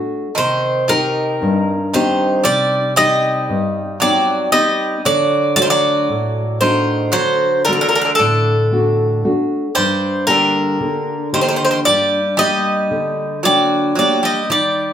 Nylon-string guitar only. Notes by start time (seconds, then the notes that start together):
Already playing: A3 D4 F#4
0.38 C3
0.89 C4 D#4 G4
1.42 G2
1.94 C4 D#4 G4
2.46 C3
2.97 C4 D#4 G4
3.49 G2
4.01 C4 D#4 G5
4.52 C4 D#4 G4
5.05 D3
5.56 A3 D4 F#4
6.09 A2
6.61 A3 D4 F#4
7.14 D3
7.68 A3 D4 F#4
8.19 A2
8.71 A3 D4 F#4
9.24 A3 D4 F#4
9.77 G2
10.28 A#3 D4 G4
10.80 D3
11.33 A#3 D4 G4
11.86 G2
12.38 A#3 G4
12.91 D3
13.45 A#3 D4 G5
13.99 A#3 D4 G4
14.49 D#3